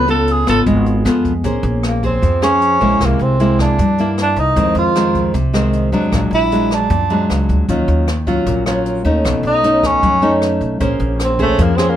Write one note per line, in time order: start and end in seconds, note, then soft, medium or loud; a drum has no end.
0.00 0.43 C#2 loud
0.00 0.64 C#3 medium
0.08 0.43 B3 medium
0.08 0.44 F4 medium
0.08 0.44 A4 medium
0.08 0.33 A4 medium
0.08 closed hi-hat soft
0.28 closed hi-hat soft
0.32 0.49 G#4 medium
0.47 0.65 G#1 medium
0.47 1.02 B3 medium
0.47 1.02 F4 medium
0.47 0.60 A4 medium
0.47 cross-stick medium
0.47 closed hi-hat soft
0.66 1.03 G#1 loud
0.66 1.42 G#3 medium
0.66 kick medium
0.66 closed hi-hat soft
0.86 closed hi-hat soft
1.05 1.42 F2 loud
1.05 1.31 B3 medium
1.05 1.32 F4 medium
1.05 1.32 A4 medium
1.05 cross-stick medium
1.05 closed hi-hat soft
1.25 kick medium
1.25 closed hi-hat soft
1.44 1.62 A#1 medium
1.44 2.20 A#3 soft
1.44 2.00 C#4 medium
1.44 2.00 G#4 soft
1.44 2.00 C5 soft
1.44 kick medium
1.44 closed hi-hat soft
1.63 2.18 A#1 loud
1.63 closed hi-hat soft
1.83 cross-stick medium
1.83 closed hi-hat soft
1.87 2.04 A#3 medium
2.03 2.41 C4 medium
2.03 2.39 G#4 medium
2.03 2.39 C5 medium
2.03 kick soft
2.03 closed hi-hat soft
2.22 2.77 F2 medium
2.22 2.98 F3 medium
2.22 kick medium
2.22 closed hi-hat soft
2.42 2.78 C#4 medium
2.42 3.07 C#4 medium
2.42 2.78 G#4 medium
2.42 2.78 C5 medium
2.42 cross-stick medium
2.42 closed hi-hat soft
2.62 closed hi-hat soft
2.81 2.99 A#1 medium
2.81 3.36 G#3 medium
2.81 3.36 A#3 medium
2.81 3.37 E4 medium
2.81 closed hi-hat soft
3.01 3.19 C2 medium
3.01 3.76 C3 medium
3.01 kick medium
3.01 cross-stick medium
3.01 closed hi-hat soft
3.05 3.24 A#3 medium
3.19 3.74 C2 medium
3.19 3.60 C4 medium
3.19 closed hi-hat soft
3.40 3.78 G#3 medium
3.40 3.78 A#3 medium
3.40 3.79 E4 medium
3.40 closed hi-hat soft
3.59 4.15 D4 medium
3.59 kick medium
3.59 cross-stick medium
3.59 closed hi-hat soft
3.79 4.33 G2 medium
3.79 4.55 G2 medium
3.79 kick medium
3.79 closed hi-hat soft
3.98 4.54 A#3 medium
3.98 4.54 E4 medium
3.98 closed hi-hat soft
4.18 cross-stick medium
4.18 closed hi-hat soft
4.22 4.41 D4 medium
4.36 4.55 C2 medium
4.36 4.77 D#4 medium
4.36 closed hi-hat soft
4.56 4.74 F2 loud
4.56 5.32 F2 medium
4.56 4.92 D#3 medium
4.56 4.92 G#3 medium
4.56 4.93 C4 medium
4.56 kick medium
4.56 closed hi-hat soft
4.75 5.30 F2 medium
4.75 5.32 F4 medium
4.75 closed hi-hat soft
4.95 5.34 D#3 medium
4.95 5.34 G#3 medium
4.95 5.35 C4 medium
4.95 cross-stick medium
4.95 closed hi-hat soft
5.15 kick soft
5.15 closed hi-hat soft
5.34 5.89 C2 medium
5.34 6.10 C3 medium
5.34 kick medium
5.34 closed hi-hat soft
5.54 5.90 D#3 medium
5.54 5.90 G#3 medium
5.54 5.90 C4 medium
5.54 cross-stick medium
5.54 closed hi-hat soft
5.73 closed hi-hat soft
5.92 6.11 F2 medium
5.92 6.48 F#3 medium
5.92 6.48 G#3 medium
5.92 6.49 D4 medium
5.92 closed hi-hat soft
6.12 6.30 A#1 medium
6.12 6.88 A#2 medium
6.12 kick medium
6.12 cross-stick medium
6.12 closed hi-hat soft
6.31 6.86 A#1 medium
6.31 6.75 E4 medium
6.31 closed hi-hat soft
6.52 6.90 F#3 medium
6.52 6.90 G#3 medium
6.52 6.91 D4 medium
6.52 closed hi-hat soft
6.71 7.31 D4 medium
6.71 cross-stick soft
6.71 closed hi-hat soft
6.90 7.26 F#2 loud
6.90 7.66 A#2 medium
6.90 kick medium
6.90 closed hi-hat soft
7.10 7.65 F#3 medium
7.10 7.65 G#3 medium
7.10 7.66 D4 medium
7.10 closed hi-hat soft
7.30 7.47 C#2 medium
7.30 cross-stick medium
7.30 closed hi-hat soft
7.49 7.66 D2 medium
7.49 kick soft
7.49 closed hi-hat soft
7.68 7.87 D#2 medium
7.68 8.45 D#3 soft
7.68 8.07 F#3 medium
7.68 8.08 C#4 soft
7.68 8.08 F4 medium
7.68 kick medium
7.68 closed hi-hat soft
7.88 8.42 D#2 medium
7.88 closed hi-hat soft
8.08 cross-stick medium
8.08 closed hi-hat soft
8.27 8.63 F#3 medium
8.27 8.63 C#4 medium
8.27 8.63 F4 medium
8.27 kick medium
8.27 closed hi-hat soft
8.46 9.01 A#1 medium
8.46 9.22 A#2 medium
8.46 kick medium
8.46 closed hi-hat soft
8.66 9.02 F#3 medium
8.66 9.02 C#4 medium
8.66 9.02 F4 medium
8.66 cross-stick medium
8.66 closed hi-hat soft
8.86 closed hi-hat soft
9.05 9.23 D#2 medium
9.05 9.60 A3 medium
9.05 9.60 C#4 medium
9.05 9.61 D#4 medium
9.05 closed hi-hat soft
9.24 9.42 B1 medium
9.24 10.00 B2 medium
9.24 kick medium
9.24 cross-stick medium
9.24 closed hi-hat soft
9.43 9.98 B1 medium
9.43 closed hi-hat soft
9.47 9.88 D#4 loud
9.64 10.19 A3 medium
9.64 10.19 C#4 medium
9.64 10.19 D#4 medium
9.64 closed hi-hat soft
9.83 10.43 C#4 medium
9.83 kick soft
9.83 cross-stick medium
9.83 closed hi-hat soft
10.03 10.57 F#2 medium
10.03 10.79 F#3 medium
10.03 kick medium
10.03 closed hi-hat soft
10.22 10.77 A3 medium
10.22 10.77 C#4 medium
10.22 10.78 D#4 medium
10.22 closed hi-hat soft
10.42 cross-stick soft
10.42 closed hi-hat soft
10.61 10.79 B1 medium
10.61 closed hi-hat soft
10.80 10.98 A#1 medium
10.80 11.56 A#3 medium
10.80 11.36 C#4 medium
10.80 11.36 G#4 medium
10.80 11.36 C5 medium
10.80 kick medium
10.80 closed hi-hat soft
11.00 11.54 A#1 loud
11.00 closed hi-hat soft
11.20 cross-stick medium
11.20 closed hi-hat soft
11.24 11.40 C4 medium
11.39 11.64 A3 medium
11.39 11.75 C#4 medium
11.39 11.75 G#4 medium
11.39 11.75 C5 medium
11.39 kick medium
11.39 closed hi-hat soft
11.58 11.96 F2 loud
11.58 11.96 F3 medium
11.58 11.77 A#3 medium
11.58 kick medium
11.58 closed hi-hat soft
11.76 11.91 C4 medium
11.76 11.96 C#4 medium
11.76 11.96 G#4 medium
11.76 11.96 C5 medium
11.76 cross-stick medium
11.76 closed hi-hat soft
11.89 11.96 A#3 medium